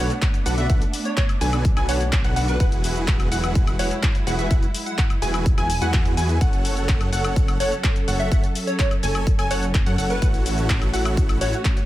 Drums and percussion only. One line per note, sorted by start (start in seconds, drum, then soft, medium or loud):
0.10 closed hi-hat soft
0.10 shaker soft
0.22 kick loud
0.22 clap loud
0.22 closed hi-hat medium
0.22 shaker soft
0.34 closed hi-hat soft
0.34 shaker soft
0.46 open hi-hat loud
0.46 shaker medium
0.58 closed hi-hat soft
0.58 shaker soft
0.70 kick loud
0.70 closed hi-hat medium
0.70 shaker soft
0.82 closed hi-hat soft
0.82 shaker soft
0.93 open hi-hat loud
0.93 shaker medium
1.05 closed hi-hat soft
1.05 shaker soft
1.17 kick loud
1.17 clap loud
1.17 closed hi-hat medium
1.17 shaker soft
1.29 closed hi-hat soft
1.29 high woodblock medium
1.29 shaker soft
1.41 open hi-hat loud
1.41 shaker medium
1.53 closed hi-hat soft
1.53 high woodblock medium
1.53 shaker soft
1.65 kick loud
1.65 closed hi-hat medium
1.65 shaker soft
1.77 closed hi-hat soft
1.77 high woodblock medium
1.77 shaker soft
1.89 open hi-hat loud
1.89 shaker medium
2.01 closed hi-hat soft
2.01 shaker soft
2.13 kick loud
2.13 clap loud
2.13 closed hi-hat medium
2.13 shaker soft
2.24 closed hi-hat soft
2.24 shaker soft
2.36 open hi-hat loud
2.36 shaker medium
2.48 closed hi-hat soft
2.48 shaker soft
2.60 kick loud
2.60 closed hi-hat medium
2.60 shaker soft
2.72 closed hi-hat soft
2.72 shaker soft
2.84 open hi-hat loud
2.84 shaker medium
2.96 closed hi-hat soft
2.96 shaker soft
3.08 kick loud
3.08 clap loud
3.08 closed hi-hat medium
3.08 shaker soft
3.20 closed hi-hat soft
3.20 high woodblock medium
3.20 shaker soft
3.32 open hi-hat loud
3.32 shaker medium
3.44 closed hi-hat soft
3.44 high woodblock medium
3.44 shaker soft
3.55 kick loud
3.55 closed hi-hat medium
3.55 shaker soft
3.67 closed hi-hat soft
3.67 high woodblock medium
3.67 shaker soft
3.79 open hi-hat loud
3.79 shaker medium
3.91 closed hi-hat soft
3.91 shaker soft
4.03 kick loud
4.03 clap loud
4.03 closed hi-hat medium
4.03 shaker soft
4.15 closed hi-hat soft
4.15 shaker soft
4.27 open hi-hat loud
4.27 shaker medium
4.39 closed hi-hat soft
4.39 shaker soft
4.51 kick loud
4.51 closed hi-hat medium
4.51 shaker soft
4.63 closed hi-hat soft
4.63 shaker soft
4.74 open hi-hat loud
4.74 shaker medium
4.86 closed hi-hat soft
4.86 shaker soft
4.98 kick loud
4.98 clap loud
4.98 closed hi-hat medium
4.98 shaker soft
5.10 closed hi-hat soft
5.10 high woodblock medium
5.10 shaker soft
5.22 open hi-hat loud
5.22 shaker medium
5.34 closed hi-hat soft
5.34 high woodblock medium
5.34 shaker soft
5.46 kick loud
5.46 closed hi-hat medium
5.46 shaker soft
5.58 closed hi-hat soft
5.58 high woodblock medium
5.58 shaker soft
5.70 open hi-hat loud
5.70 shaker medium
5.82 closed hi-hat soft
5.82 shaker soft
5.93 kick loud
5.93 clap loud
5.93 closed hi-hat medium
5.93 shaker soft
6.05 closed hi-hat soft
6.05 shaker soft
6.17 open hi-hat loud
6.17 shaker medium
6.29 closed hi-hat soft
6.29 shaker soft
6.41 kick loud
6.41 closed hi-hat medium
6.41 shaker soft
6.53 closed hi-hat soft
6.53 shaker soft
6.65 open hi-hat loud
6.65 shaker medium
6.77 closed hi-hat soft
6.77 shaker soft
6.89 kick loud
6.89 clap loud
6.89 closed hi-hat medium
6.89 shaker soft
7.01 closed hi-hat soft
7.01 high woodblock medium
7.01 shaker soft
7.13 open hi-hat loud
7.13 shaker medium
7.24 closed hi-hat soft
7.24 high woodblock medium
7.24 shaker soft
7.36 kick loud
7.36 closed hi-hat medium
7.36 shaker soft
7.48 closed hi-hat soft
7.48 high woodblock medium
7.48 shaker soft
7.60 open hi-hat loud
7.60 shaker medium
7.72 closed hi-hat soft
7.72 shaker soft
7.84 kick loud
7.84 clap loud
7.84 closed hi-hat medium
7.84 shaker soft
7.96 closed hi-hat soft
7.96 shaker soft
8.08 open hi-hat loud
8.08 shaker medium
8.20 closed hi-hat soft
8.20 shaker soft
8.32 kick loud
8.32 closed hi-hat medium
8.32 shaker soft
8.44 closed hi-hat soft
8.44 shaker soft
8.55 open hi-hat loud
8.55 shaker medium
8.67 closed hi-hat soft
8.67 shaker soft
8.79 kick loud
8.79 clap loud
8.79 closed hi-hat medium
8.79 shaker soft
8.91 closed hi-hat soft
8.91 high woodblock medium
8.91 shaker soft
9.03 open hi-hat loud
9.03 shaker medium
9.15 closed hi-hat soft
9.15 high woodblock medium
9.15 shaker soft
9.27 kick loud
9.27 closed hi-hat medium
9.27 shaker soft
9.39 closed hi-hat soft
9.39 high woodblock medium
9.39 shaker soft
9.51 open hi-hat loud
9.51 shaker medium
9.63 closed hi-hat soft
9.63 shaker soft
9.74 kick loud
9.74 clap loud
9.74 closed hi-hat medium
9.74 shaker soft
9.86 closed hi-hat soft
9.86 shaker soft
9.98 open hi-hat loud
9.98 shaker medium
10.10 closed hi-hat soft
10.10 shaker soft
10.22 kick loud
10.22 closed hi-hat medium
10.22 shaker soft
10.34 closed hi-hat soft
10.34 shaker soft
10.46 open hi-hat loud
10.46 shaker medium
10.58 closed hi-hat soft
10.58 shaker soft
10.70 kick loud
10.70 clap loud
10.70 closed hi-hat medium
10.70 shaker soft
10.82 closed hi-hat soft
10.82 high woodblock medium
10.82 shaker soft
10.94 open hi-hat loud
10.94 shaker medium
11.05 closed hi-hat soft
11.05 high woodblock medium
11.05 shaker soft
11.17 kick loud
11.17 closed hi-hat medium
11.17 shaker soft
11.29 closed hi-hat soft
11.29 high woodblock medium
11.29 shaker soft
11.41 open hi-hat loud
11.41 shaker medium
11.53 closed hi-hat soft
11.53 shaker soft
11.65 kick loud
11.65 clap loud
11.65 closed hi-hat medium
11.65 shaker soft
11.77 closed hi-hat soft
11.77 shaker soft